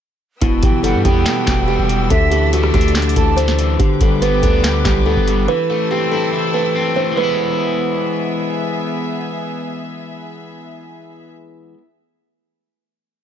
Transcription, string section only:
0.41 2.09 B4 medium
0.41 2.09 G5 medium
0.41 3.76 E6 medium
2.10 3.78 D5 medium
2.10 3.78 A5 medium
3.80 5.47 B4 medium
3.80 5.47 G5 medium
3.80 5.47 D6 medium
5.48 7.16 C4 medium
5.48 7.16 A5 medium
5.48 7.16 E6 medium
7.18 11.32 B3 medium
7.18 11.32 G#4 medium
7.18 11.32 E5 medium

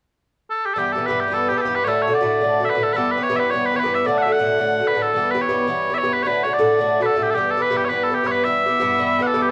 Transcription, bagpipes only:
0.50 0.65 A4 medium
0.65 0.74 G4 medium
0.74 0.78 A4 medium
0.78 0.92 G4 medium
0.92 1.06 A4 medium
1.06 1.20 B4 medium
1.20 1.34 G4 medium
1.34 1.49 A4 medium
1.49 1.58 G4 medium
1.58 1.75 G4 medium
1.58 1.61 A4 medium
1.75 1.84 B4 medium
1.84 2.02 A4 medium
1.84 1.88 C#5 medium
2.02 2.14 C#5 medium
2.14 2.65 D5 medium
2.65 2.69 E5 medium
2.69 2.83 B4 medium
2.83 2.93 A4 medium
2.93 3.11 A4 medium
2.93 2.96 B4 medium
3.11 3.23 B4 medium
3.23 3.36 C#5 medium
3.36 3.50 B4 medium
3.36 3.39 E5 medium
3.50 3.66 C#5 medium
3.65 3.76 B4 medium
3.76 3.95 B4 medium
3.76 3.79 C#5 medium
3.95 4.07 E5 medium
4.07 4.18 D5 medium
4.18 4.22 F#5 medium
4.22 4.32 E5 medium
4.32 4.87 F#5 medium
4.87 5.02 B4 medium
5.02 5.13 A4 medium
5.13 5.31 A4 medium
5.31 5.41 B4 medium
5.41 5.94 C#5 medium
5.94 6.13 C#5 medium
5.94 5.98 E5 medium
6.13 6.23 B4 medium
6.23 6.27 C#5 medium
6.27 6.43 B4 medium
6.43 6.54 C#5 medium
6.54 7.02 D5 medium
7.02 7.06 B4 medium
7.06 7.23 A4 medium
7.23 7.30 G4 medium
7.30 7.51 G4 medium
7.30 7.34 A4 medium
7.51 7.62 A4 medium
7.62 7.77 B4 medium
7.77 7.85 G4 medium
7.85 7.89 C#5 medium
7.89 8.04 B4 medium
8.04 8.14 A4 medium
8.14 8.27 G4 medium
8.27 8.31 C#5 medium
8.31 8.44 B4 medium
8.44 9.22 E5 medium
9.22 9.27 F#5 medium
9.27 9.42 A4 medium
9.42 9.49 G4 medium

